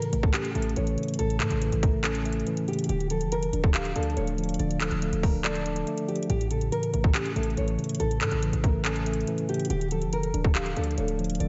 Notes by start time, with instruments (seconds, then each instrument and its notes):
Already playing: tine electric piano A2 C#3 E3, nylon-string guitar A#4
0.02 closed hi-hat
0.12 808-style bass A1, tine electric piano A3, closed hi-hat
0.23 nylon-string guitar A4, kick
0.34 tine electric piano C#4, nylon-string guitar G4, clap, closed hi-hat
0.45 closed hi-hat
0.55 808-style bass A1, tine electric piano A3, nylon-string guitar A4, closed hi-hat
0.62 closed hi-hat
0.69 closed hi-hat
0.76 808-style bass A1, tine electric piano E3, nylon-string guitar C#5, closed hi-hat
0.87 closed hi-hat
0.97 tine electric piano C#3, closed hi-hat
1.03 closed hi-hat
1.08 closed hi-hat
1.14 closed hi-hat
1.19 808-style bass A1, tine electric piano A2, nylon-string guitar A4, closed hi-hat
1.30 closed hi-hat
1.40 808-style bass A2, tine electric piano C#3, nylon-string guitar A4, clap, closed hi-hat
1.51 808-style bass A1, closed hi-hat
1.61 tine electric piano E3, closed hi-hat
1.72 808-style bass A1, closed hi-hat
1.83 tine electric piano A3, nylon-string guitar A#4, kick, closed hi-hat
2.04 tine electric piano C#4, nylon-string guitar A4, clap, closed hi-hat
2.15 closed hi-hat
2.25 tine electric piano A3, closed hi-hat
2.33 closed hi-hat
2.40 closed hi-hat
2.47 tine electric piano E3, closed hi-hat
2.57 closed hi-hat
2.68 tine electric piano C#3, nylon-string guitar G4, closed hi-hat
2.73 closed hi-hat
2.79 closed hi-hat
2.84 closed hi-hat
2.89 808-style bass D1, tine electric piano D3, nylon-string guitar G4, closed hi-hat
3.00 closed hi-hat
3.10 tine electric piano F3, nylon-string guitar A4, closed hi-hat
3.21 808-style bass F1, closed hi-hat
3.32 nylon-string guitar A#4, closed hi-hat
3.43 closed hi-hat
3.53 808-style bass D1, tine electric piano D4, closed hi-hat
3.64 nylon-string guitar A4, kick
3.74 nylon-string guitar G4, tine electric piano F5, clap, closed hi-hat
3.85 closed hi-hat
3.96 808-style bass D2, tine electric piano D4, nylon-string guitar A4, closed hi-hat
4.03 closed hi-hat
4.10 closed hi-hat
4.17 808-style bass D1, tine electric piano A3, nylon-string guitar C#5, closed hi-hat
4.27 closed hi-hat
4.38 tine electric piano F3, closed hi-hat
4.44 closed hi-hat
4.49 closed hi-hat
4.54 closed hi-hat
4.59 808-style bass D1, tine electric piano D3, nylon-string guitar D5, closed hi-hat
4.71 closed hi-hat
4.80 tine electric piano F3, nylon-string guitar A4, clap, closed hi-hat
4.91 808-style bass D1, closed hi-hat
5.02 tine electric piano A3, closed hi-hat
5.13 808-style bass D1, closed hi-hat
5.23 tine electric piano D4, nylon-string guitar A#4, kick, open hi-hat
5.44 nylon-string guitar A4, tine electric piano D5, clap, closed hi-hat
5.55 closed hi-hat
5.66 tine electric piano D4, closed hi-hat
5.76 closed hi-hat
5.87 tine electric piano A3, closed hi-hat
5.98 closed hi-hat
6.08 tine electric piano F3, nylon-string guitar G4, closed hi-hat
6.16 closed hi-hat
6.23 closed hi-hat
6.29 808-style bass A1, tine electric piano A2, nylon-string guitar G4, closed hi-hat
6.41 closed hi-hat
6.51 tine electric piano C#3, nylon-string guitar A4, closed hi-hat
6.61 closed hi-hat
6.72 tine electric piano E3, nylon-string guitar A#4, closed hi-hat
6.83 closed hi-hat
6.93 808-style bass A1, tine electric piano A3, closed hi-hat
7.04 nylon-string guitar A4, kick
7.14 tine electric piano C#4, nylon-string guitar G4, clap, closed hi-hat
7.26 closed hi-hat
7.36 808-style bass A1, tine electric piano A3, nylon-string guitar A4, closed hi-hat
7.43 closed hi-hat
7.50 closed hi-hat
7.57 808-style bass A1, tine electric piano E3, nylon-string guitar C#5, closed hi-hat
7.68 closed hi-hat
7.78 tine electric piano C#3, closed hi-hat
7.84 closed hi-hat
7.89 closed hi-hat
7.95 closed hi-hat
8.00 808-style bass A1, tine electric piano A2, nylon-string guitar A4, closed hi-hat
8.11 closed hi-hat
8.21 808-style bass A2, tine electric piano C#3, nylon-string guitar A4, clap, closed hi-hat
8.31 808-style bass A1, closed hi-hat
8.42 tine electric piano E3, closed hi-hat
8.53 808-style bass A1, closed hi-hat
8.64 tine electric piano A3, nylon-string guitar A#4, kick, closed hi-hat
8.85 tine electric piano C#4, nylon-string guitar A4, clap, closed hi-hat
8.96 closed hi-hat
9.06 tine electric piano A3, closed hi-hat
9.13 closed hi-hat
9.21 closed hi-hat
9.27 tine electric piano E3, closed hi-hat
9.38 closed hi-hat
9.49 tine electric piano C#3, nylon-string guitar G4, closed hi-hat
9.54 closed hi-hat
9.60 closed hi-hat
9.65 closed hi-hat
9.70 808-style bass D1, tine electric piano D3, nylon-string guitar G4, closed hi-hat
9.81 closed hi-hat
9.91 tine electric piano F3, nylon-string guitar A4, closed hi-hat
10.02 808-style bass F1, closed hi-hat
10.13 nylon-string guitar A#4, closed hi-hat
10.23 closed hi-hat
10.34 808-style bass D1, tine electric piano D4, closed hi-hat
10.44 nylon-string guitar A4, kick
10.55 nylon-string guitar G4, tine electric piano F5, clap, closed hi-hat
10.66 closed hi-hat
10.76 808-style bass D2, tine electric piano D4, nylon-string guitar A4, closed hi-hat
10.84 closed hi-hat
10.91 closed hi-hat
10.98 808-style bass D1, tine electric piano A3, nylon-string guitar C#5, closed hi-hat
11.08 closed hi-hat
11.19 tine electric piano F3, closed hi-hat
11.24 closed hi-hat
11.30 closed hi-hat
11.35 closed hi-hat
11.40 808-style bass D1, tine electric piano D3, nylon-string guitar D5, closed hi-hat